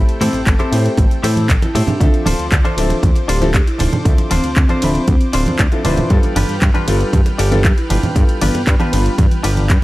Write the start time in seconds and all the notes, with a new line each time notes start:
Already playing: A3 C4 E4 G4 A4 G5 B5
0.09 closed hi-hat
0.21 A2 C4 E4 G4 A4 C5, open hi-hat, ride, high conga
0.33 A1, closed hi-hat, muted conga
0.47 A1, kick, clap, closed hi-hat
0.59 C4 E4 G4 A4 C5, closed hi-hat, muted conga, high conga
0.71 A2 A3 C4 E4 G4 C5, open hi-hat, ride
0.86 closed hi-hat
0.97 A1, kick, closed hi-hat, muted conga, high conga
1.11 closed hi-hat
1.23 A2 E4 G4 A4 C5, open hi-hat, ride, muted conga
1.36 closed hi-hat, high conga
1.49 A1, kick, clap, closed hi-hat
1.62 E4, closed hi-hat, muted conga
1.75 A2 E4 G4 A4 C5, open hi-hat, ride, low conga
1.87 D4, closed hi-hat, muted conga, high conga, low conga
2.00 D2 F3 C4 D4 A4 C5 E5 D6, kick, closed hi-hat
2.14 closed hi-hat
2.26 D1 D4 F4 A4 C5, open hi-hat, ride, muted conga, high conga
2.39 D2, closed hi-hat
2.51 D2, kick, clap, closed hi-hat, muted conga
2.65 D4 F4 A4 C5, closed hi-hat, high conga
2.77 D1 F3 C4 D4 A4 E5, open hi-hat, ride
2.90 closed hi-hat, muted conga
3.03 D2, kick, closed hi-hat, high conga
3.16 closed hi-hat, muted conga
3.28 D1 D4 F4 G4 A4 C5, open hi-hat, ride
3.41 F3 C4 D4 E4 G4 A4, closed hi-hat, high conga
3.54 D2, kick, clap, closed hi-hat, muted conga
3.67 E4, closed hi-hat
3.79 D1 D4 F4 A4 C5, open hi-hat, ride, muted conga, low conga
3.92 closed hi-hat, high conga, low conga
4.05 D2 F3 C4 D4 A4 E5, kick, closed hi-hat
4.18 closed hi-hat, muted conga
4.31 D1 C4 D4 F4 A4 C5, open hi-hat, ride, high conga
4.44 D2, closed hi-hat, muted conga
4.56 D2 C4, kick, clap, closed hi-hat
4.69 D4 F4 A4 C5, closed hi-hat, high conga
4.82 D1 F3 C4 D4 E5 B5, open hi-hat, ride, muted conga
4.95 closed hi-hat
5.07 D2, kick, closed hi-hat, muted conga, high conga
5.21 closed hi-hat
5.33 D1 D4 F4 A4 C5, open hi-hat, ride
5.46 D2, closed hi-hat, muted conga, high conga
5.59 D2, kick, clap, closed hi-hat
5.72 F3 C4 D4 E4 A4, closed hi-hat, muted conga
5.85 D1 F3 C4 D4 E4 F4 A4 B4 C5, open hi-hat, ride, low conga
5.97 closed hi-hat, high conga, low conga
6.10 G2 G3 B3 D4 F4 A4 B4 G5 F6, kick, closed hi-hat
6.23 closed hi-hat, muted conga
6.36 G1 D4 F4 G4 B4, open hi-hat, ride, high conga
6.49 G2, closed hi-hat
6.62 G2, kick, clap, closed hi-hat, muted conga
6.74 D4 F4 G4 B4, closed hi-hat, high conga
6.87 G1 G3 B3 D4 F4 A4, open hi-hat, ride, muted conga
7.01 closed hi-hat
7.13 G2, kick, closed hi-hat, high conga
7.26 closed hi-hat, muted conga
7.38 G1 D4 F4 G4 A4, open hi-hat, ride
7.51 G3 B3 D4 F4 G4 A4, closed hi-hat, muted conga, high conga
7.64 G2, kick, clap, closed hi-hat
7.78 E4, closed hi-hat
7.90 G1 D4 F4 G4 B4, open hi-hat, ride, muted conga, low conga
8.03 closed hi-hat, high conga, low conga
8.15 G2 G3 B3 D4 F4 A4, kick, closed hi-hat, muted conga
8.29 closed hi-hat
8.41 G1 B3 D4 F4 G4 B4, open hi-hat, ride, high conga
8.55 G2, closed hi-hat, muted conga
8.67 G2, kick, clap, closed hi-hat
8.79 B3 D4 F4 G4 B4, closed hi-hat, muted conga, high conga
8.92 G1 G3 B3 D4 F4 B4, open hi-hat, ride
9.06 closed hi-hat
9.18 G2, kick, closed hi-hat, muted conga, high conga
9.31 closed hi-hat
9.43 G1 D4 F4 G4 B4, open hi-hat, ride, muted conga
9.56 closed hi-hat, high conga
9.70 G2, kick, clap, closed hi-hat